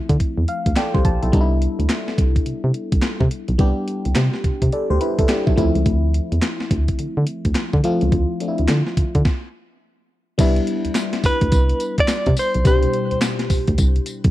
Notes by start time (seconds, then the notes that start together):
Already playing: F3 A3 C4 E4
0.09 D3, kick, closed hi-hat
0.20 kick, closed hi-hat
0.38 E2
0.48 F5, closed hi-hat
0.66 D2, kick, closed hi-hat
0.76 A4 D5 G5, snare, clap, closed hi-hat
0.94 C2 G4 C5, kick
1.05 A#1 A5, kick, closed hi-hat
1.23 B1 E4 A4, closed hi-hat
1.32 C2 G3 B3 D4 D#4, kick, closed hi-hat
1.41 E4
1.62 closed hi-hat
1.79 D2, closed hi-hat
1.89 snare, clap, closed hi-hat
2.08 snare
2.18 C2, kick, closed hi-hat
2.36 kick, closed hi-hat
2.46 C3, closed hi-hat
2.64 C3
2.74 closed hi-hat
2.92 C2, kick, closed hi-hat
3.02 snare, clap, closed hi-hat
3.21 C3, kick
3.31 closed hi-hat
3.48 B1, closed hi-hat
3.58 C2 G3 B3 D4 G4, kick, closed hi-hat
3.88 closed hi-hat
4.05 C2, closed hi-hat
4.15 C3, snare, clap, closed hi-hat
4.33 snare
4.44 C3, kick, closed hi-hat
4.62 C3, kick, closed hi-hat
4.72 A4 D5, closed hi-hat
4.90 D2 G4 C5
5.01 E4 B4, closed hi-hat
5.19 C2 E4 A4, kick, closed hi-hat
5.28 D4 G4, snare, clap, closed hi-hat
5.47 B1 B3 E4, kick
5.56 D2 F3 A3 C4 E4, kick, closed hi-hat
5.75 C#2, closed hi-hat
5.86 D2, kick, closed hi-hat
6.14 closed hi-hat
6.32 E2, closed hi-hat
6.42 snare, clap, closed hi-hat
6.60 snare
6.71 D2, kick, closed hi-hat
6.88 kick, closed hi-hat
6.99 D3, closed hi-hat
7.17 D3
7.27 closed hi-hat
7.45 D2, kick, closed hi-hat
7.55 snare, clap, closed hi-hat
7.73 D3, kick
7.84 F3 A3 C4 F4, closed hi-hat
8.01 C#2, closed hi-hat
8.12 D2, kick, closed hi-hat
8.40 F3 A3 C4 D4, closed hi-hat
8.48 E4
8.58 D2, closed hi-hat
8.68 D3, snare, clap, closed hi-hat
8.87 snare
8.97 D3, kick, closed hi-hat
9.15 D3, kick, closed hi-hat
9.25 kick, snare
10.38 C2 G3 B3 D4 E4, kick, closed hi-hat, crash, tambourine
10.56 closed hi-hat
10.67 closed hi-hat
10.85 D2, closed hi-hat
10.95 snare, clap, closed hi-hat, tambourine
11.13 snare, closed hi-hat
11.24 D2 B4, kick, open hi-hat, tambourine
11.41 D2, kick, closed hi-hat
11.52 C2, kick, closed hi-hat, tambourine
11.69 closed hi-hat
11.80 closed hi-hat, tambourine
11.98 D5, kick, closed hi-hat
12.08 snare, clap, closed hi-hat, tambourine
12.26 C3, kick, closed hi-hat
12.37 C5, open hi-hat, tambourine
12.54 B1, closed hi-hat
12.64 C2 B2 G3 D4 G4 C5, kick, closed hi-hat, tambourine
12.83 closed hi-hat
12.93 closed hi-hat
13.11 D2, closed hi-hat
13.21 snare, clap, closed hi-hat, tambourine
13.39 snare, closed hi-hat
13.50 D2, kick, open hi-hat, tambourine
13.67 D2, kick, closed hi-hat
13.78 C2, kick, closed hi-hat, tambourine
13.96 closed hi-hat
14.06 closed hi-hat, tambourine
14.24 B1, kick, closed hi-hat